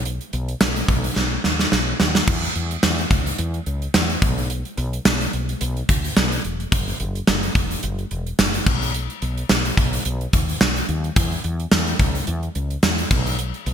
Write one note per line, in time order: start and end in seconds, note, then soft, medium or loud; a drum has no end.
0.00 0.18 B1 loud
0.05 closed hi-hat loud
0.21 closed hi-hat soft
0.33 0.53 B1 medium
0.33 closed hi-hat medium
0.48 closed hi-hat medium
0.61 0.81 B1 loud
0.61 snare loud
0.61 tambourine medium
0.76 closed hi-hat medium
0.88 1.09 B1 loud
0.88 kick medium
0.88 closed hi-hat medium
1.04 closed hi-hat medium
1.16 1.36 B1 loud
1.16 snare medium
1.44 1.64 D#2 medium
1.44 snare medium
1.59 snare medium
1.72 1.92 B1 medium
1.72 snare medium
2.00 2.20 D#2 medium
2.00 snare loud
2.15 snare medium
2.27 2.48 E2 loud
2.27 kick loud
2.27 crash loud
2.43 closed hi-hat soft
2.55 2.75 E2 loud
2.55 closed hi-hat medium
2.71 closed hi-hat medium
2.83 3.03 E2 loud
2.83 snare loud
2.83 tambourine medium
2.98 closed hi-hat medium
3.11 3.31 C#2 medium
3.11 kick loud
3.11 closed hi-hat medium
3.26 closed hi-hat medium
3.38 3.59 E2 loud
3.38 closed hi-hat loud
3.54 closed hi-hat soft
3.66 3.86 C#2 medium
3.66 closed hi-hat medium
3.82 closed hi-hat medium
3.94 4.14 E2 loud
3.94 snare loud
3.94 tambourine medium
4.10 closed hi-hat medium
4.22 4.62 B1 loud
4.22 kick loud
4.22 closed hi-hat medium
4.38 closed hi-hat soft
4.50 closed hi-hat loud
4.65 closed hi-hat medium
4.77 4.98 B1 loud
4.77 closed hi-hat medium
4.93 closed hi-hat medium
5.05 5.25 B1 loud
5.05 snare loud
5.05 tambourine medium
5.21 closed hi-hat medium
5.33 5.53 B1 medium
5.33 closed hi-hat medium
5.49 closed hi-hat medium
5.61 5.81 B1 loud
5.61 closed hi-hat loud
5.77 closed hi-hat soft
5.89 6.09 D2 medium
5.89 kick medium
5.89 closed hi-hat medium
6.04 closed hi-hat medium
6.16 6.37 B1 loud
6.16 snare loud
6.16 tambourine medium
6.32 closed hi-hat medium
6.44 6.64 E1 loud
6.44 closed hi-hat medium
6.60 closed hi-hat soft
6.72 6.92 F#1 loud
6.72 kick loud
6.72 closed hi-hat loud
6.88 closed hi-hat soft
7.00 7.20 F#1 loud
7.00 closed hi-hat medium
7.15 closed hi-hat medium
7.27 7.48 F#1 loud
7.27 snare loud
7.27 tambourine medium
7.43 closed hi-hat medium
7.55 7.75 E1 medium
7.55 kick loud
7.55 closed hi-hat medium
7.71 closed hi-hat medium
7.83 8.03 F#1 loud
7.83 closed hi-hat loud
7.99 closed hi-hat soft
8.11 8.31 E1 medium
8.11 closed hi-hat medium
8.27 closed hi-hat medium
8.39 8.59 F#1 loud
8.39 snare loud
8.39 tambourine medium
8.54 closed hi-hat medium
8.66 9.06 B1 loud
8.66 kick loud
8.66 crash medium
8.82 closed hi-hat medium
8.94 closed hi-hat loud
9.10 closed hi-hat medium
9.22 9.42 B1 medium
9.22 closed hi-hat medium
9.38 closed hi-hat medium
9.49 9.70 B1 loud
9.49 snare loud
9.49 tambourine medium
9.65 closed hi-hat medium
9.77 9.97 B1 loud
9.77 kick loud
9.77 closed hi-hat medium
9.93 closed hi-hat medium
10.05 10.25 B1 loud
10.05 closed hi-hat loud
10.21 closed hi-hat soft
10.33 10.53 D#2 medium
10.33 kick medium
10.33 closed hi-hat medium
10.49 closed hi-hat medium
10.61 10.81 B1 medium
10.61 snare loud
10.61 tambourine medium
10.76 closed hi-hat medium
10.89 11.09 D#2 medium
10.89 closed hi-hat medium
11.04 closed hi-hat medium
11.16 11.36 E2 loud
11.16 kick loud
11.16 closed hi-hat loud
11.32 closed hi-hat soft
11.44 11.64 E2 loud
11.44 closed hi-hat medium
11.60 closed hi-hat medium
11.71 11.92 E2 medium
11.71 snare loud
11.71 tambourine medium
11.87 closed hi-hat medium
11.99 12.20 C#2 medium
11.99 kick loud
11.99 closed hi-hat medium
12.15 closed hi-hat medium
12.27 12.48 E2 loud
12.27 closed hi-hat loud
12.43 closed hi-hat soft
12.55 12.75 C#2 medium
12.55 closed hi-hat medium
12.70 closed hi-hat soft
12.83 13.03 E2 loud
12.83 snare loud
12.83 tambourine medium
12.98 closed hi-hat medium
13.11 13.51 B1 loud
13.11 kick loud
13.11 crash medium
13.26 closed hi-hat medium
13.39 closed hi-hat loud
13.54 closed hi-hat soft
13.66 13.74 B1 loud
13.66 closed hi-hat medium